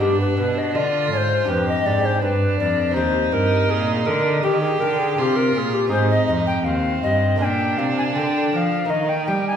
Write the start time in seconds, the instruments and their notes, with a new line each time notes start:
Already playing: lute B3 D4
0.00 cello G2, lute G2 G4, violin D4, recorder G4
0.20 recorder B4
0.37 lute B2, cello B2, recorder B4
0.58 recorder D#5
0.74 cello D3, lute D3, violin F4, recorder D5
1.11 cello G#2, lute G#2, recorder C#5
1.17 recorder C5
1.44 cello F2, lute D4 G4
1.48 lute F2, violin G4, recorder B4
1.68 recorder D#5
1.84 cello G#2, lute G#2, recorder D5
2.05 recorder C5
2.22 cello G2, lute G2, violin D4, recorder B4
2.59 cello F2, lute F2, recorder D5
2.91 lute C4 D#4 G4
2.96 cello D#2, lute D#2, violin D#4, recorder C5
3.32 lute G2, cello G2, recorder A#4
3.69 lute A#2, cello A#2, recorder G#4
4.05 lute D3, cello D3, recorder A#4
4.43 lute D#3, cello D#3, recorder G4, violin G4
4.61 recorder G#4
4.80 cello D3, lute D3, recorder A#4
4.99 recorder G#4
5.17 lute C3, cello C3, violin F4, recorder G#4
5.21 recorder G4
5.36 recorder A#4
5.54 cello A#2, lute A#2, recorder A#4
5.58 recorder G#4
5.74 recorder G4
5.87 lute C4 D#4 G#4
5.91 cello G#2, lute G#2, violin D#4, recorder C5
6.10 recorder D#5
6.26 cello F2, lute F2, recorder D#5
6.47 recorder G5
6.64 cello D#2, lute D#2, violin C4, recorder F5
7.02 cello G2, lute G2, recorder D#5
7.36 cello A#2, lute A#3 D4 A#4
7.40 lute A#2, violin D4, recorder G5 G#5
7.77 cello C3, lute C3, recorder F5
7.98 recorder G#5
8.15 cello D3, lute D3, recorder G5
8.52 cello F3, lute F3, recorder G5
8.56 recorder F5
8.85 lute A#3 D#4 A#4
8.89 lute D#3, cello D#3, violin D#4, recorder D#5
9.09 recorder G5
9.26 cello G3, lute G3, recorder G5
9.47 recorder G#5